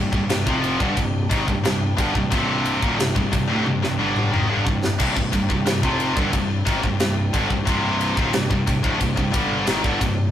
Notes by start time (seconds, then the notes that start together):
Already playing: C1 C2 G2 C3 G3 D4 G4
0.12 C1 C2 G2, kick
0.29 C1 C2 G2, snare, ride
0.46 F1 F2 C3 F3, kick
0.64 ride
0.79 G1 G2 D3, kick
0.96 C1 C2 G2, kick, ride
1.30 G#1 G#2 D#3, kick, ride
1.47 C1 C2 G2, kick
1.64 C1 C2 G2, snare, ride
1.97 G1 G2 D3, kick, ride
2.14 C1 C2 G2, kick
2.30 C1 C2 G2 C3, kick, ride
2.65 ride
2.81 D#1 D#2 A#2, kick
2.98 C1 C2 G2, snare, ride
3.15 C1 C2 G2, kick
3.32 C1 C2 G2, kick, ride
3.48 D1 D2 A2
3.65 C1 C2 G2, high tom
3.82 C1 C2 G2, snare
3.99 G1 G2 D3 G3
4.16 mid tom
4.31 G#1 G#2 D#3, mid tom
4.48 G1 G2 D3
4.65 C1 C2 G2, kick
4.84 snare
4.99 C1 C2 G2 C4, kick, crash
5.16 C1 C2 G2, kick
5.32 C1 C2 G2, kick, ride
5.49 C1 C2 G2, kick
5.65 C1 C2 G2, snare, ride
5.83 F1 F2 C3 F3, kick
6.00 ride
6.17 G1 G2 D3, kick
6.33 C1 C2 G2, kick, ride
6.66 G#1 G#2 D#3, kick, ride
6.83 C1 C2 G2, kick
7.00 C1 C2 G2, snare, ride
7.33 G1 G2 D3, kick, ride
7.49 C1 C2 G2, kick
7.65 C1 C2 G2 C3, kick, ride
8.01 ride
8.16 D#1 D#2 A#2, kick
8.33 C1 C2 G2, snare, ride
8.50 C1 C2 G2, kick
8.67 C1 C2 G2, kick, ride
8.83 D1 D2 A2, kick
8.99 C1 C2 G2, kick, ride
9.16 C1 C2 G2, kick
9.32 G1 G2 D3 G3, kick, ride
9.65 G#1 G#2 D#3, snare, ride
9.83 G1 G2 D3, kick
10.00 C1 C2 G2, kick, ride